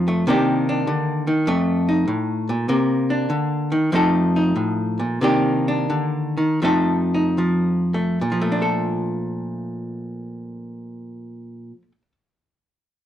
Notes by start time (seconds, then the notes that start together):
Already playing: F2 F3 D#4 A4
0.08 A3
0.27 C3 D#3 A#3 D4 G4
0.69 D4
0.87 D3
1.27 D#3
1.47 F2 A3
1.89 D#4
2.08 A2
2.49 A#2
2.69 C3 A#3
3.10 D4
3.30 D3
3.72 D#3
3.92 F2 F3 A3 D#4 A4
4.36 D#4
4.56 A2
4.99 A#2
5.21 C3 D#3 A#3 D4 G4
5.68 D4
5.90 D3
6.37 D#3
6.62 F2 F3 A3 D#4 A4
7.14 D#4
7.38 F3
7.94 A3
8.21 A#2
8.32 F3
8.42 A3
8.52 D4
8.62 A4